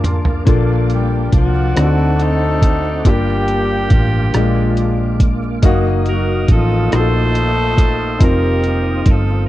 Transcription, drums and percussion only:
0.04 closed hi-hat, mid tom
0.25 floor tom
0.47 kick, closed hi-hat
0.90 closed hi-hat
1.32 kick, closed hi-hat
1.77 cross-stick, closed hi-hat
2.19 closed hi-hat
2.62 kick, closed hi-hat
3.05 kick, closed hi-hat
3.48 closed hi-hat
3.90 kick, closed hi-hat
4.34 cross-stick, closed hi-hat
4.77 closed hi-hat
5.20 kick, closed hi-hat
5.63 kick, closed hi-hat
6.06 closed hi-hat
6.48 kick, closed hi-hat
6.92 cross-stick, closed hi-hat
7.35 closed hi-hat
7.78 kick, closed hi-hat
8.20 kick, closed hi-hat
8.64 closed hi-hat
9.06 kick, closed hi-hat

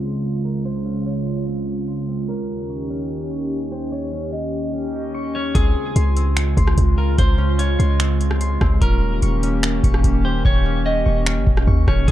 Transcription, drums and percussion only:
5.55 kick, closed hi-hat
5.96 closed hi-hat
6.17 closed hi-hat
6.37 finger snap, closed hi-hat
6.57 kick, closed hi-hat
6.67 cross-stick
6.78 kick, closed hi-hat
7.18 kick, closed hi-hat
7.59 closed hi-hat
7.80 closed hi-hat
8.00 finger snap, closed hi-hat
8.21 closed hi-hat
8.31 cross-stick
8.41 closed hi-hat
8.61 kick, cross-stick
8.82 kick, closed hi-hat
9.22 closed hi-hat
9.43 closed hi-hat
9.63 finger snap, closed hi-hat
9.84 kick, closed hi-hat
9.94 cross-stick
10.04 kick, closed hi-hat
10.45 kick
11.26 finger snap
11.47 kick
11.57 cross-stick
11.67 kick
11.88 kick, cross-stick
12.08 kick, closed hi-hat

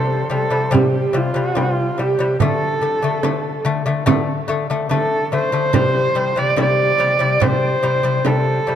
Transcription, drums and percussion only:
0.74 frame drum
1.16 frame drum
1.57 frame drum
1.98 frame drum
2.40 frame drum
2.80 frame drum
3.23 frame drum
4.07 frame drum
4.50 frame drum
4.91 frame drum
5.32 frame drum
5.74 frame drum
6.57 frame drum
7.42 frame drum
7.84 frame drum
8.25 frame drum
8.68 frame drum

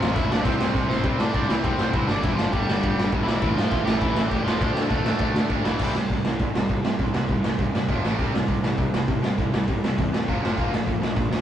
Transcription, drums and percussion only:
0.03 snare
0.16 kick, crash
0.32 snare
0.45 kick, crash
0.61 snare
0.74 kick, snare
0.90 snare
1.03 kick, ride
1.20 snare
1.34 kick, ride
1.50 snare
1.64 kick, ride
1.79 snare
1.93 kick, ride
2.09 snare
2.23 kick, ride
2.39 snare
2.53 kick, ride
2.69 snare
2.83 kick, ride
2.99 snare
3.12 kick, ride
3.28 snare
3.42 kick, ride
3.58 snare
3.71 kick, ride
3.87 snare
4.01 kick, ride
4.16 snare
4.31 kick, ride
4.48 snare
4.61 kick, ride
4.77 snare
4.90 kick, ride
5.06 snare
5.19 kick, ride
5.36 snare
5.50 kick, ride
5.65 snare
5.79 kick, crash
5.95 snare
6.10 kick, open hi-hat
6.25 snare
6.39 kick, open hi-hat
6.55 snare
6.69 kick, open hi-hat
6.85 snare
6.99 kick, open hi-hat
7.14 snare
7.28 kick, open hi-hat
7.44 snare
7.58 kick, open hi-hat
7.75 snare
7.88 kick, open hi-hat
8.05 snare
8.19 kick, open hi-hat
8.35 snare
8.48 kick, open hi-hat
8.64 snare
8.78 kick, open hi-hat
8.94 snare
9.08 kick, open hi-hat
9.24 snare
9.38 kick, open hi-hat
9.54 snare
9.68 kick, open hi-hat
9.84 snare
9.98 kick, open hi-hat
10.14 snare
10.28 kick, open hi-hat
10.45 snare
10.58 kick, open hi-hat
10.74 snare
10.87 kick, open hi-hat
11.03 snare
11.17 kick, open hi-hat
11.33 snare

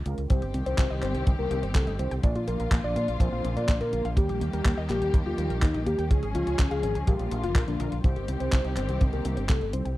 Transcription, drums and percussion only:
0.06 closed hi-hat
0.18 closed hi-hat
0.30 kick, closed hi-hat
0.42 closed hi-hat
0.54 closed hi-hat
0.66 closed hi-hat
0.78 kick, clap, closed hi-hat
1.02 clap, closed hi-hat
1.15 closed hi-hat
1.27 kick, closed hi-hat
1.51 closed hi-hat
1.63 closed hi-hat
1.75 kick, clap, closed hi-hat
1.87 closed hi-hat
1.99 closed hi-hat
2.11 closed hi-hat
2.23 kick, closed hi-hat
2.36 closed hi-hat
2.48 closed hi-hat
2.60 closed hi-hat
2.71 kick, clap, closed hi-hat
2.96 closed hi-hat
3.08 closed hi-hat
3.20 kick, closed hi-hat
3.45 closed hi-hat
3.57 closed hi-hat
3.69 kick, clap, closed hi-hat
3.81 closed hi-hat
3.93 closed hi-hat
4.05 closed hi-hat
4.17 kick, closed hi-hat
4.29 closed hi-hat
4.41 closed hi-hat
4.53 closed hi-hat
4.65 kick, clap, closed hi-hat
4.90 clap, closed hi-hat
5.02 closed hi-hat
5.14 kick, closed hi-hat
5.38 closed hi-hat
5.50 closed hi-hat
5.62 kick, clap, closed hi-hat
5.74 closed hi-hat
5.87 closed hi-hat
5.99 closed hi-hat
6.11 kick, closed hi-hat
6.23 closed hi-hat
6.35 closed hi-hat
6.47 closed hi-hat
6.59 kick, clap, closed hi-hat
6.71 closed hi-hat
6.83 closed hi-hat
6.95 closed hi-hat
7.07 kick, closed hi-hat
7.19 closed hi-hat
7.31 closed hi-hat
7.44 closed hi-hat
7.55 kick, clap, closed hi-hat
7.68 closed hi-hat
7.80 closed hi-hat
7.92 closed hi-hat
8.04 kick, closed hi-hat
8.16 closed hi-hat
8.28 closed hi-hat
8.40 closed hi-hat
8.52 kick, clap, closed hi-hat
8.65 closed hi-hat
8.77 clap, closed hi-hat
8.89 closed hi-hat
9.01 kick, closed hi-hat
9.13 closed hi-hat
9.25 closed hi-hat
9.37 closed hi-hat
9.49 kick, clap, closed hi-hat
9.61 closed hi-hat
9.73 closed hi-hat
9.86 closed hi-hat

